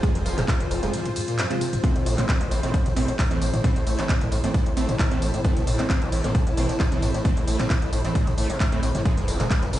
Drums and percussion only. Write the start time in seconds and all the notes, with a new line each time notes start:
0.03 kick, closed hi-hat, ride, tambourine
0.15 closed hi-hat, ride, tambourine
0.26 open hi-hat, ride, tambourine
0.38 clap, closed hi-hat, mid tom, ride, tambourine
0.48 kick, clap, closed hi-hat, ride, tambourine
0.60 closed hi-hat, ride, tambourine
0.71 open hi-hat, ride, tambourine
0.83 closed hi-hat, ride, tambourine
0.94 closed hi-hat, ride, tambourine
1.05 closed hi-hat, mid tom, ride, tambourine
1.16 open hi-hat, ride, tambourine
1.28 closed hi-hat, ride, tambourine
1.39 clap, closed hi-hat, ride, tambourine
1.51 closed hi-hat, ride, tambourine
1.61 open hi-hat, ride, tambourine
1.73 closed hi-hat, mid tom, ride, tambourine
1.84 kick, closed hi-hat, ride, tambourine
1.96 closed hi-hat, ride, tambourine
2.06 open hi-hat, ride, tambourine
2.18 clap, closed hi-hat, mid tom, ride, tambourine
2.29 kick, clap, closed hi-hat, ride, tambourine
2.41 closed hi-hat, ride, tambourine
2.51 open hi-hat, ride, tambourine
2.63 closed hi-hat, ride, tambourine
2.74 kick, closed hi-hat, ride, tambourine
2.86 closed hi-hat, mid tom, ride, tambourine
2.96 open hi-hat, ride, tambourine
3.08 closed hi-hat, ride, tambourine
3.19 kick, clap, closed hi-hat, ride, tambourine
3.31 closed hi-hat, ride
3.42 open hi-hat, ride, tambourine
3.54 closed hi-hat, mid tom, ride, tambourine
3.64 kick, closed hi-hat, ride, tambourine
3.76 closed hi-hat, ride, tambourine
3.87 open hi-hat, ride, tambourine
3.99 clap, closed hi-hat, ride, tambourine
4.09 kick, clap, closed hi-hat, ride, tambourine
4.21 closed hi-hat, mid tom, ride, tambourine
4.32 open hi-hat, ride, tambourine
4.44 closed hi-hat, ride, tambourine
4.54 kick, closed hi-hat, ride, tambourine
4.66 closed hi-hat, ride, tambourine
4.77 open hi-hat, ride, tambourine
4.89 closed hi-hat, mid tom, ride, tambourine
4.99 kick, clap, closed hi-hat, ride, tambourine
5.11 closed hi-hat, ride, tambourine
5.22 open hi-hat, ride, tambourine
5.34 closed hi-hat, ride, tambourine
5.45 kick, closed hi-hat, ride, tambourine
5.57 closed hi-hat, mid tom, ride, tambourine
5.67 open hi-hat, ride, tambourine
5.79 clap, closed hi-hat, ride, tambourine
5.90 kick, clap, closed hi-hat, ride, tambourine
6.02 closed hi-hat, ride, tambourine
6.12 open hi-hat, ride, tambourine
6.24 closed hi-hat, mid tom, ride, tambourine
6.35 kick, closed hi-hat, ride, tambourine
6.47 closed hi-hat, ride, tambourine
6.57 open hi-hat, ride, tambourine
6.69 closed hi-hat, ride, tambourine
6.80 kick, clap, closed hi-hat, ride, tambourine
6.92 closed hi-hat, mid tom, ride, tambourine
7.02 open hi-hat, ride, tambourine
7.14 closed hi-hat, ride, tambourine
7.25 kick, closed hi-hat, ride, tambourine
7.37 closed hi-hat, ride, tambourine
7.47 open hi-hat, ride, tambourine
7.59 clap, closed hi-hat, mid tom, ride, tambourine
7.70 kick, clap, closed hi-hat, ride, tambourine
7.82 closed hi-hat, ride, tambourine
7.93 open hi-hat, ride, tambourine
8.05 closed hi-hat, ride, tambourine
8.15 kick, closed hi-hat, ride, tambourine
8.27 closed hi-hat, mid tom, ride, tambourine
8.38 open hi-hat, ride, tambourine
8.50 closed hi-hat, ride, tambourine
8.60 kick, clap, closed hi-hat, ride, tambourine
8.72 closed hi-hat, ride, tambourine
8.83 open hi-hat, ride, tambourine
8.95 closed hi-hat, mid tom, ride, tambourine
9.05 kick, closed hi-hat, ride, tambourine
9.17 closed hi-hat, ride, tambourine
9.28 open hi-hat, ride, tambourine
9.40 clap, closed hi-hat, mid tom, ride, tambourine
9.51 kick, clap, closed hi-hat, ride, tambourine
9.62 closed hi-hat, ride, tambourine
9.73 open hi-hat, ride, tambourine